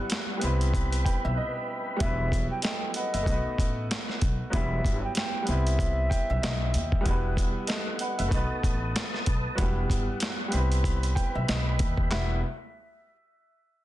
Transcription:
Already playing: upright piano G3 B3 E4 F#4 B4, tonewheel organ G3 F#5
0.10 snare, closed hi-hat
0.37 upright piano G3 B3
0.41 upright bass C2, upright piano C4 E4, tonewheel organ B4 B5, closed hi-hat
0.46 upright piano B4
0.61 closed hi-hat
0.74 kick, closed hi-hat
0.92 closed hi-hat
1.04 upright piano G5, kick, closed hi-hat
1.25 upright bass B1, upright piano E5
1.37 upright piano D#5
1.96 upright piano G3 B3, flute E5, closed hi-hat
2.01 upright bass E1, upright piano F#3 E4, kick
2.06 upright piano B4
2.32 kick, closed hi-hat
2.51 flute G5
2.62 upright piano A4 D#5, flute G5, snare, closed hi-hat
2.94 upright piano B4 F#5, flute D#5, closed hi-hat
3.13 upright bass F#1, upright piano B4 E5, closed hi-hat
3.23 upright bass B1, upright piano A3 B3, kick
3.27 upright piano D#4 F#4, closed hi-hat
3.32 upright piano B4
3.46 muted upright bass stroke
3.58 upright bass A1, kick, closed hi-hat
3.91 snare, closed hi-hat
4.09 snare
4.21 upright bass B1, kick, closed hi-hat
4.50 upright bass E1, upright piano F#3 B3 E4, flute E5, kick, closed hi-hat
4.55 upright piano G3 B4
4.85 upright bass G1, kick, closed hi-hat
5.04 flute G5
5.15 flute G5, snare, closed hi-hat
5.42 upright piano G3 B3
5.47 upright bass C2, upright piano C4 E4, flute E5, closed hi-hat
5.52 upright piano B4
5.67 closed hi-hat
5.79 kick, closed hi-hat
6.10 upright piano G5, kick, closed hi-hat
6.30 upright bass B1, upright piano E5
6.42 upright piano D#5, snare, closed hi-hat
6.74 upright bass D#2, closed hi-hat
6.92 kick
7.01 upright piano G3 B3
7.05 upright bass E1, tonewheel organ G3 F#5, upright piano E4 F#4, kick, closed hi-hat
7.10 upright piano B4
7.37 kick, closed hi-hat
7.67 upright piano A4 D#5, snare, closed hi-hat
7.99 upright piano B4 F#5, closed hi-hat
8.18 upright bass F#1, upright piano B4 E5, closed hi-hat
8.28 upright bass B1, upright piano A3 B3, kick
8.32 upright piano D#4 F#4, tonewheel organ B4 A5 D#6, closed hi-hat
8.37 upright piano B4
8.51 muted upright bass stroke
8.63 upright bass A1, kick, closed hi-hat
8.96 snare, closed hi-hat
9.14 snare
9.26 upright bass B1, kick, closed hi-hat
9.55 upright bass E1, upright piano F#3 B3 E4 F#4, tonewheel organ G3 F#5, kick, closed hi-hat
9.60 upright piano G3 B4
9.90 upright bass G1, kick, closed hi-hat
10.20 snare, closed hi-hat
10.48 upright piano G3 B3, closed hi-hat
10.53 upright bass C2, upright piano C4 E4, tonewheel organ B4 B5
10.57 upright piano B4
10.72 closed hi-hat
10.84 kick, closed hi-hat
11.03 closed hi-hat
11.15 upright piano G5, kick, closed hi-hat
11.35 upright bass B1, upright piano E5
11.48 upright bass B1, upright piano D#5, snare, closed hi-hat
11.79 upright bass D#2, kick, closed hi-hat
11.97 kick
12.11 upright bass E1, upright piano G3 B3 E4 F#4 B4, flute E5, tonewheel organ E5 F#5, snare, clap

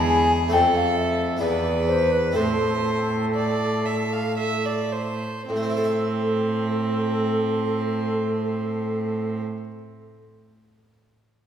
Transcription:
Already playing: harpsichord E2 G#3 D4 B4, cello E2, violin G#4
0.08 flute G#5
0.48 harpsichord A3 C4 A4, violin A4, flute G5
0.53 harpsichord F2, cello F2
0.75 flute F5
0.96 flute E5
1.37 harpsichord B3 E4 G#4, flute D5
1.41 harpsichord E2, cello E2, violin B4
1.88 flute C5
2.11 flute B4
2.32 harpsichord C4 E4 A4, flute A4, violin C5
2.36 harpsichord A2, cello A2
3.35 violin D5
3.86 violin E5
4.13 violin F5
4.38 violin E5
4.65 violin D5
4.92 violin C5
5.47 harpsichord A2, cello A2, violin C4, flute A4
5.56 harpsichord A3
5.63 harpsichord C4
5.70 harpsichord E4
5.77 harpsichord A4
5.84 harpsichord E5

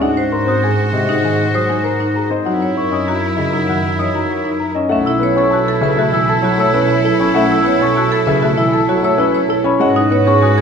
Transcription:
0.01 double bass section G#2, grand piano G#3 F#5, marimba D#4, oboe F#4, violin section F#4 C5
0.17 marimba C5
0.32 grand piano A#4, celesta C6
0.47 grand piano C4 C5, marimba F#4, celesta D#6
0.63 marimba G#4, grand piano G#5
0.93 grand piano C3 D#5, celesta D#5
1.08 grand piano G#3 G#4, marimba D#4
1.23 grand piano D#3 D#5, marimba G#4, celesta G#5
1.54 grand piano F#3 C5, marimba C5, celesta D#6
1.69 grand piano G#3 G#5, marimba D#4
1.84 grand piano A#4, marimba C5
2.00 marimba D#4
2.14 grand piano G#4, celesta A#5
2.30 grand piano C4 C5, marimba C4, celesta D#5
2.45 double bass section F#2, grand piano F#3 F#5, marimba D#4, violin section E4 A#4, oboe E4
2.62 marimba C#5
2.76 grand piano C#5, celesta C#6
2.91 grand piano C#4 D#5, marimba E4, celesta D#6
3.07 marimba F#4, grand piano A#5
3.36 grand piano C#3 E5, celesta D#5
3.52 grand piano F#3 A#4, marimba D#4
3.67 grand piano D#3 E5, marimba F#4, celesta F#5
3.98 grand piano E3 D#5, marimba C#5, celesta D#6
4.14 grand piano F#3 A#5, marimba D#4
4.29 grand piano C#5, marimba C#5
4.45 marimba D#4
4.60 grand piano A#4, celesta A#5
4.74 grand piano C#4 D#5, marimba C#4, celesta D#5
4.89 double bass section B1, grand piano A3 F#5, marimba C#4, oboe E4, violin section E4 A4, celesta E5
5.06 marimba E4, celesta E6
5.20 grand piano B3 B4, marimba C#5
5.36 grand piano C#4 C#5, marimba A4, celesta C#6
5.51 marimba F#4, grand piano A5, celesta E6
5.68 marimba A4
5.81 grand piano C#3 E5, marimba B4
5.96 grand piano A3 A4, marimba F#4, celesta E5
6.11 grand piano E3 E5, marimba E4, celesta E6
6.29 marimba A4, celesta A5
6.42 grand piano F#3 C#5, marimba F#4
6.58 grand piano A3 A5, marimba C#5, celesta E6
6.74 grand piano C#4 B4, marimba E4
6.90 marimba C#5
7.04 marimba E4, grand piano A4
7.19 grand piano C#4 C#5, celesta B5
7.34 grand piano A3 F#5, marimba C#4, celesta E5
7.51 marimba E4, celesta E6
7.64 grand piano B3 B4, marimba C#5
7.80 grand piano C#4 C#5, marimba A4, celesta C#6
7.96 marimba F#4, grand piano A5, celesta E6
8.12 marimba A4
8.27 grand piano C#3 E5, marimba B4
8.42 grand piano A3 A4, marimba F#4, celesta E5
8.57 grand piano E3 E5, marimba E4, celesta E6
8.73 marimba A4, celesta A5
8.88 grand piano F#3 C#5, marimba F#4
9.03 grand piano A3 A5, marimba C#5, celesta E6
9.18 grand piano C#4 B4, marimba E4
9.35 marimba C#5
9.49 marimba E4, grand piano A4
9.64 grand piano C#4 C#5, celesta B5
9.80 double bass section G#2, grand piano G#3 F#5, marimba C#4, violin section F#4 B4, oboe F#4, celesta D#5
9.96 marimba D#4, celesta D#6
10.10 grand piano B3 B4, marimba C#5
10.25 grand piano C#4 C#5, marimba G#4, celesta C#6
10.42 marimba F#4, grand piano G#5, celesta D#6
10.58 marimba G#4

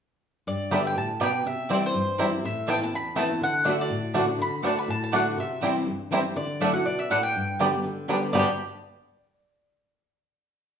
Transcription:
0.47 steel-string acoustic guitar G2, mandolin D5
0.71 steel-string acoustic guitar D3 G3 B3 G4, five-string banjo G3 B3 D4, mandolin B3 G4 D5 E5 G5
0.87 mandolin G5
0.95 steel-string acoustic guitar A2, mandolin A5
1.20 steel-string acoustic guitar B2, five-string banjo G3 B3 D4, mandolin B3 G4 D5 G5
1.45 steel-string acoustic guitar C3, mandolin E5
1.69 steel-string acoustic guitar E3 G3 C4 E4, five-string banjo G3 C4 E4, mandolin C4 E4 C5 D5 G5
1.86 mandolin C5
1.94 steel-string acoustic guitar G2
2.18 steel-string acoustic guitar E3 G3 C4 E4, five-string banjo G3 C4 E4, mandolin C4 E4 C5 G5
2.32 steel-string acoustic guitar C4 E4
2.44 steel-string acoustic guitar A2, mandolin E5
2.67 steel-string acoustic guitar E3 B3 C4 E4, five-string banjo A3 B3 E4, mandolin C4 E4 B4 G5 A5
2.81 steel-string acoustic guitar B3 E4, mandolin A5
2.92 steel-string acoustic guitar E2, mandolin B5
3.15 steel-string acoustic guitar E3 B3 C4 E4, five-string banjo A3 B3 E4, mandolin C4 E4 B4 A5
3.29 steel-string acoustic guitar B3 E4
3.41 steel-string acoustic guitar D3, mandolin F#5
3.64 steel-string acoustic guitar D3 A3 D4 F#4, mandolin A3 F#4 D5 F#5, five-string banjo A3 D4
3.69 mandolin E5
3.81 mandolin D5
3.90 steel-string acoustic guitar A2
4.14 steel-string acoustic guitar D3 A3 D4 F#4, mandolin A3 F#4 D5 F#5, five-string banjo A3 D4
4.27 steel-string acoustic guitar D4 F#4
4.38 steel-string acoustic guitar D3, mandolin B5
4.62 steel-string acoustic guitar D3 A3 D4 F#4, mandolin A3 F#4 D5 F#5, five-string banjo A3 D4
4.67 mandolin A5
4.79 mandolin B5
4.88 steel-string acoustic guitar A2, mandolin A5
5.04 mandolin A5
5.12 steel-string acoustic guitar D3 A3 D4 F#4, mandolin A3 F#4 D5 F#5, five-string banjo A3 D4
5.38 steel-string acoustic guitar C3, mandolin E5
5.61 steel-string acoustic guitar E3 G3 C4 E4, five-string banjo G3 C4 E4, mandolin C4 E4 C5 G5
5.86 steel-string acoustic guitar G2
6.11 steel-string acoustic guitar E3 G3 C4 E4, five-string banjo G3 C4 E4, mandolin C4 E4 C5 G5
6.24 steel-string acoustic guitar C4 E4
6.36 steel-string acoustic guitar D3, mandolin D5
6.60 steel-string acoustic guitar F#3 A3 E4 F#4, mandolin A3 E4 D5 E5 F#5, five-string banjo A3 D4
6.73 steel-string acoustic guitar E4 F#4, mandolin F#5
6.86 steel-string acoustic guitar B2, mandolin D5
6.99 mandolin E5
7.10 steel-string acoustic guitar A2, mandolin A3 E4 D5 F#5, five-string banjo A3 D4
7.23 mandolin G5
7.36 steel-string acoustic guitar G2
7.59 steel-string acoustic guitar D3 G3 B3 G4, five-string banjo G3 B3 D4, mandolin B3 G4 D5 G5
7.73 steel-string acoustic guitar B3 G4
7.84 steel-string acoustic guitar D3
8.08 steel-string acoustic guitar D3 G3 B3 G4, five-string banjo G3 B3 D4, mandolin B3 G4 D5 G5
8.32 steel-string acoustic guitar G2 B2 D3 G3 B3 G4, five-string banjo G3 B3, mandolin B3 G4 D5 G5
8.37 five-string banjo D4 G4

